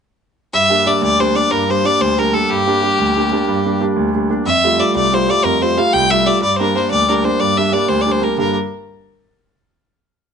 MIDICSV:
0, 0, Header, 1, 3, 480
1, 0, Start_track
1, 0, Tempo, 327690
1, 775, Time_signature, 12, 3, 24, 8
1, 15142, End_track
2, 0, Start_track
2, 0, Title_t, "Fiddle"
2, 0, Program_c, 0, 110
2, 783, Note_on_c, 0, 76, 101
2, 1274, Note_on_c, 0, 74, 82
2, 1296, Note_off_c, 0, 76, 0
2, 1502, Note_off_c, 0, 74, 0
2, 1512, Note_on_c, 0, 74, 99
2, 1760, Note_on_c, 0, 72, 84
2, 1782, Note_off_c, 0, 74, 0
2, 1985, Note_on_c, 0, 74, 92
2, 2006, Note_off_c, 0, 72, 0
2, 2211, Note_on_c, 0, 70, 84
2, 2233, Note_off_c, 0, 74, 0
2, 2489, Note_on_c, 0, 72, 78
2, 2511, Note_off_c, 0, 70, 0
2, 2720, Note_on_c, 0, 74, 85
2, 2742, Note_off_c, 0, 72, 0
2, 2945, Note_on_c, 0, 72, 84
2, 2967, Note_off_c, 0, 74, 0
2, 3201, Note_on_c, 0, 70, 76
2, 3223, Note_off_c, 0, 72, 0
2, 3424, Note_on_c, 0, 69, 75
2, 3446, Note_off_c, 0, 70, 0
2, 3663, Note_on_c, 0, 67, 85
2, 3685, Note_off_c, 0, 69, 0
2, 5588, Note_off_c, 0, 67, 0
2, 6534, Note_on_c, 0, 76, 95
2, 7025, Note_on_c, 0, 74, 80
2, 7047, Note_off_c, 0, 76, 0
2, 7255, Note_off_c, 0, 74, 0
2, 7266, Note_on_c, 0, 74, 87
2, 7526, Note_on_c, 0, 72, 83
2, 7548, Note_off_c, 0, 74, 0
2, 7760, Note_on_c, 0, 74, 93
2, 7782, Note_off_c, 0, 72, 0
2, 7972, Note_on_c, 0, 70, 85
2, 7994, Note_off_c, 0, 74, 0
2, 8225, Note_on_c, 0, 72, 75
2, 8247, Note_off_c, 0, 70, 0
2, 8461, Note_on_c, 0, 77, 87
2, 8483, Note_off_c, 0, 72, 0
2, 8678, Note_on_c, 0, 79, 101
2, 8700, Note_off_c, 0, 77, 0
2, 8933, Note_on_c, 0, 76, 89
2, 8955, Note_off_c, 0, 79, 0
2, 9167, Note_on_c, 0, 74, 77
2, 9189, Note_off_c, 0, 76, 0
2, 9394, Note_off_c, 0, 74, 0
2, 9402, Note_on_c, 0, 74, 80
2, 9611, Note_on_c, 0, 72, 49
2, 9633, Note_off_c, 0, 74, 0
2, 9653, Note_on_c, 0, 70, 71
2, 9675, Note_off_c, 0, 72, 0
2, 9893, Note_on_c, 0, 72, 68
2, 9915, Note_off_c, 0, 70, 0
2, 10112, Note_off_c, 0, 72, 0
2, 10121, Note_on_c, 0, 74, 87
2, 10380, Note_on_c, 0, 70, 68
2, 10402, Note_off_c, 0, 74, 0
2, 10611, Note_on_c, 0, 72, 76
2, 10633, Note_off_c, 0, 70, 0
2, 10840, Note_on_c, 0, 74, 85
2, 10862, Note_off_c, 0, 72, 0
2, 11090, Note_on_c, 0, 76, 74
2, 11112, Note_off_c, 0, 74, 0
2, 11320, Note_on_c, 0, 74, 74
2, 11342, Note_off_c, 0, 76, 0
2, 11549, Note_on_c, 0, 72, 81
2, 11571, Note_off_c, 0, 74, 0
2, 11734, Note_on_c, 0, 74, 65
2, 11756, Note_off_c, 0, 72, 0
2, 11890, Note_on_c, 0, 72, 73
2, 11912, Note_off_c, 0, 74, 0
2, 12060, Note_on_c, 0, 70, 60
2, 12082, Note_off_c, 0, 72, 0
2, 12273, Note_off_c, 0, 70, 0
2, 12282, Note_on_c, 0, 70, 70
2, 12524, Note_off_c, 0, 70, 0
2, 15142, End_track
3, 0, Start_track
3, 0, Title_t, "Grand piano"
3, 0, Program_c, 1, 0
3, 787, Note_on_c, 1, 43, 57
3, 1026, Note_on_c, 1, 55, 46
3, 1033, Note_on_c, 1, 58, 37
3, 1038, Note_on_c, 1, 62, 48
3, 1236, Note_off_c, 1, 55, 0
3, 1240, Note_off_c, 1, 58, 0
3, 1241, Note_off_c, 1, 62, 0
3, 1257, Note_off_c, 1, 43, 0
3, 1258, Note_on_c, 1, 55, 37
3, 1262, Note_on_c, 1, 58, 42
3, 1263, Note_on_c, 1, 62, 47
3, 1487, Note_on_c, 1, 38, 54
3, 1654, Note_off_c, 1, 55, 0
3, 1656, Note_off_c, 1, 58, 0
3, 1657, Note_off_c, 1, 62, 0
3, 1747, Note_on_c, 1, 55, 45
3, 1747, Note_on_c, 1, 58, 39
3, 1759, Note_on_c, 1, 62, 51
3, 1952, Note_off_c, 1, 55, 0
3, 1959, Note_off_c, 1, 58, 0
3, 1962, Note_off_c, 1, 62, 0
3, 1968, Note_off_c, 1, 38, 0
3, 1974, Note_on_c, 1, 55, 40
3, 1981, Note_on_c, 1, 58, 41
3, 1983, Note_on_c, 1, 62, 55
3, 2213, Note_on_c, 1, 43, 62
3, 2372, Note_off_c, 1, 55, 0
3, 2376, Note_off_c, 1, 58, 0
3, 2377, Note_off_c, 1, 62, 0
3, 2473, Note_on_c, 1, 55, 35
3, 2475, Note_on_c, 1, 58, 36
3, 2487, Note_on_c, 1, 62, 41
3, 2679, Note_off_c, 1, 55, 0
3, 2679, Note_off_c, 1, 58, 0
3, 2684, Note_off_c, 1, 62, 0
3, 2691, Note_off_c, 1, 43, 0
3, 2701, Note_on_c, 1, 55, 43
3, 2701, Note_on_c, 1, 58, 36
3, 2706, Note_on_c, 1, 62, 52
3, 2932, Note_on_c, 1, 38, 56
3, 3096, Note_off_c, 1, 55, 0
3, 3096, Note_off_c, 1, 58, 0
3, 3099, Note_off_c, 1, 62, 0
3, 3188, Note_on_c, 1, 55, 36
3, 3194, Note_on_c, 1, 58, 37
3, 3199, Note_on_c, 1, 62, 43
3, 3393, Note_off_c, 1, 55, 0
3, 3400, Note_off_c, 1, 58, 0
3, 3406, Note_off_c, 1, 62, 0
3, 3410, Note_off_c, 1, 38, 0
3, 3415, Note_on_c, 1, 55, 42
3, 3422, Note_on_c, 1, 58, 43
3, 3428, Note_on_c, 1, 62, 46
3, 3660, Note_on_c, 1, 43, 57
3, 3812, Note_off_c, 1, 55, 0
3, 3816, Note_off_c, 1, 58, 0
3, 3820, Note_off_c, 1, 62, 0
3, 3908, Note_on_c, 1, 55, 50
3, 3914, Note_on_c, 1, 58, 44
3, 3921, Note_on_c, 1, 62, 55
3, 4120, Note_off_c, 1, 55, 0
3, 4123, Note_off_c, 1, 58, 0
3, 4133, Note_off_c, 1, 62, 0
3, 4135, Note_off_c, 1, 43, 0
3, 4142, Note_on_c, 1, 55, 48
3, 4145, Note_on_c, 1, 58, 40
3, 4155, Note_on_c, 1, 62, 47
3, 4373, Note_on_c, 1, 38, 56
3, 4536, Note_off_c, 1, 55, 0
3, 4538, Note_off_c, 1, 58, 0
3, 4544, Note_off_c, 1, 62, 0
3, 4631, Note_on_c, 1, 55, 43
3, 4640, Note_on_c, 1, 58, 38
3, 4646, Note_on_c, 1, 62, 48
3, 4838, Note_off_c, 1, 55, 0
3, 4849, Note_off_c, 1, 58, 0
3, 4850, Note_off_c, 1, 38, 0
3, 4854, Note_off_c, 1, 62, 0
3, 4860, Note_on_c, 1, 55, 46
3, 4871, Note_on_c, 1, 58, 45
3, 4876, Note_on_c, 1, 62, 53
3, 5095, Note_on_c, 1, 43, 64
3, 5254, Note_off_c, 1, 55, 0
3, 5261, Note_off_c, 1, 58, 0
3, 5263, Note_off_c, 1, 62, 0
3, 5355, Note_on_c, 1, 55, 42
3, 5361, Note_on_c, 1, 58, 37
3, 5365, Note_on_c, 1, 62, 49
3, 5557, Note_off_c, 1, 55, 0
3, 5560, Note_off_c, 1, 58, 0
3, 5567, Note_off_c, 1, 62, 0
3, 5570, Note_off_c, 1, 43, 0
3, 5579, Note_on_c, 1, 55, 47
3, 5582, Note_on_c, 1, 58, 39
3, 5589, Note_on_c, 1, 62, 49
3, 5802, Note_on_c, 1, 38, 59
3, 5973, Note_off_c, 1, 55, 0
3, 5974, Note_off_c, 1, 58, 0
3, 5978, Note_off_c, 1, 62, 0
3, 6066, Note_on_c, 1, 55, 36
3, 6073, Note_on_c, 1, 58, 34
3, 6073, Note_on_c, 1, 62, 41
3, 6278, Note_off_c, 1, 55, 0
3, 6279, Note_off_c, 1, 58, 0
3, 6283, Note_off_c, 1, 38, 0
3, 6285, Note_off_c, 1, 62, 0
3, 6300, Note_on_c, 1, 55, 38
3, 6301, Note_on_c, 1, 58, 41
3, 6307, Note_on_c, 1, 62, 53
3, 6486, Note_off_c, 1, 55, 0
3, 6487, Note_off_c, 1, 58, 0
3, 6491, Note_off_c, 1, 62, 0
3, 6533, Note_on_c, 1, 41, 54
3, 6796, Note_on_c, 1, 55, 45
3, 6805, Note_on_c, 1, 57, 47
3, 6805, Note_on_c, 1, 65, 52
3, 6983, Note_off_c, 1, 55, 0
3, 6990, Note_off_c, 1, 57, 0
3, 7001, Note_off_c, 1, 65, 0
3, 7005, Note_on_c, 1, 55, 45
3, 7007, Note_off_c, 1, 41, 0
3, 7012, Note_on_c, 1, 57, 38
3, 7023, Note_on_c, 1, 65, 51
3, 7244, Note_on_c, 1, 36, 58
3, 7403, Note_off_c, 1, 55, 0
3, 7407, Note_off_c, 1, 57, 0
3, 7413, Note_off_c, 1, 65, 0
3, 7506, Note_on_c, 1, 55, 42
3, 7508, Note_on_c, 1, 57, 38
3, 7518, Note_on_c, 1, 65, 54
3, 7721, Note_off_c, 1, 55, 0
3, 7722, Note_off_c, 1, 36, 0
3, 7724, Note_off_c, 1, 57, 0
3, 7730, Note_off_c, 1, 65, 0
3, 7742, Note_on_c, 1, 55, 47
3, 7746, Note_on_c, 1, 57, 40
3, 7752, Note_on_c, 1, 65, 49
3, 7967, Note_on_c, 1, 41, 50
3, 8132, Note_off_c, 1, 55, 0
3, 8135, Note_off_c, 1, 57, 0
3, 8138, Note_off_c, 1, 65, 0
3, 8223, Note_on_c, 1, 55, 38
3, 8235, Note_on_c, 1, 57, 31
3, 8237, Note_on_c, 1, 65, 45
3, 8437, Note_off_c, 1, 55, 0
3, 8441, Note_off_c, 1, 57, 0
3, 8443, Note_off_c, 1, 41, 0
3, 8446, Note_off_c, 1, 65, 0
3, 8459, Note_on_c, 1, 55, 45
3, 8463, Note_on_c, 1, 57, 45
3, 8468, Note_on_c, 1, 65, 53
3, 8695, Note_on_c, 1, 36, 64
3, 8849, Note_off_c, 1, 55, 0
3, 8852, Note_off_c, 1, 57, 0
3, 8855, Note_off_c, 1, 65, 0
3, 8942, Note_on_c, 1, 55, 42
3, 8952, Note_on_c, 1, 57, 38
3, 8953, Note_on_c, 1, 65, 43
3, 9145, Note_off_c, 1, 55, 0
3, 9146, Note_off_c, 1, 57, 0
3, 9154, Note_off_c, 1, 65, 0
3, 9166, Note_off_c, 1, 36, 0
3, 9167, Note_on_c, 1, 55, 43
3, 9168, Note_on_c, 1, 57, 40
3, 9176, Note_on_c, 1, 65, 46
3, 9355, Note_off_c, 1, 55, 0
3, 9356, Note_off_c, 1, 57, 0
3, 9361, Note_off_c, 1, 65, 0
3, 9400, Note_on_c, 1, 43, 64
3, 9665, Note_on_c, 1, 55, 44
3, 9671, Note_on_c, 1, 58, 43
3, 9679, Note_on_c, 1, 62, 56
3, 9866, Note_off_c, 1, 55, 0
3, 9875, Note_off_c, 1, 58, 0
3, 9877, Note_off_c, 1, 43, 0
3, 9880, Note_off_c, 1, 62, 0
3, 9888, Note_on_c, 1, 55, 39
3, 9897, Note_on_c, 1, 58, 41
3, 9902, Note_on_c, 1, 62, 45
3, 10125, Note_on_c, 1, 38, 52
3, 10282, Note_off_c, 1, 55, 0
3, 10288, Note_off_c, 1, 58, 0
3, 10290, Note_off_c, 1, 62, 0
3, 10375, Note_on_c, 1, 55, 40
3, 10385, Note_on_c, 1, 58, 44
3, 10389, Note_on_c, 1, 62, 51
3, 10587, Note_off_c, 1, 55, 0
3, 10595, Note_off_c, 1, 58, 0
3, 10597, Note_off_c, 1, 62, 0
3, 10600, Note_off_c, 1, 38, 0
3, 10609, Note_on_c, 1, 55, 40
3, 10617, Note_on_c, 1, 58, 39
3, 10619, Note_on_c, 1, 62, 52
3, 10838, Note_on_c, 1, 43, 54
3, 11002, Note_off_c, 1, 55, 0
3, 11007, Note_off_c, 1, 58, 0
3, 11009, Note_off_c, 1, 62, 0
3, 11096, Note_on_c, 1, 55, 43
3, 11100, Note_on_c, 1, 58, 31
3, 11103, Note_on_c, 1, 62, 42
3, 11287, Note_off_c, 1, 55, 0
3, 11292, Note_off_c, 1, 58, 0
3, 11304, Note_off_c, 1, 62, 0
3, 11309, Note_on_c, 1, 55, 45
3, 11314, Note_on_c, 1, 58, 38
3, 11316, Note_off_c, 1, 43, 0
3, 11326, Note_on_c, 1, 62, 51
3, 11550, Note_on_c, 1, 38, 54
3, 11710, Note_off_c, 1, 55, 0
3, 11713, Note_off_c, 1, 58, 0
3, 11720, Note_off_c, 1, 62, 0
3, 11803, Note_on_c, 1, 55, 35
3, 11808, Note_on_c, 1, 58, 33
3, 11814, Note_on_c, 1, 62, 46
3, 12015, Note_off_c, 1, 55, 0
3, 12022, Note_off_c, 1, 58, 0
3, 12029, Note_off_c, 1, 62, 0
3, 12032, Note_off_c, 1, 38, 0
3, 12037, Note_on_c, 1, 55, 40
3, 12044, Note_on_c, 1, 58, 42
3, 12051, Note_on_c, 1, 62, 42
3, 12229, Note_off_c, 1, 55, 0
3, 12233, Note_off_c, 1, 58, 0
3, 12237, Note_off_c, 1, 62, 0
3, 12261, Note_on_c, 1, 43, 48
3, 12266, Note_on_c, 1, 50, 39
3, 12280, Note_on_c, 1, 55, 44
3, 12283, Note_on_c, 1, 58, 44
3, 12291, Note_on_c, 1, 62, 52
3, 12513, Note_off_c, 1, 43, 0
3, 12516, Note_off_c, 1, 50, 0
3, 12523, Note_off_c, 1, 55, 0
3, 12524, Note_off_c, 1, 58, 0
3, 12529, Note_off_c, 1, 62, 0
3, 15142, End_track
0, 0, End_of_file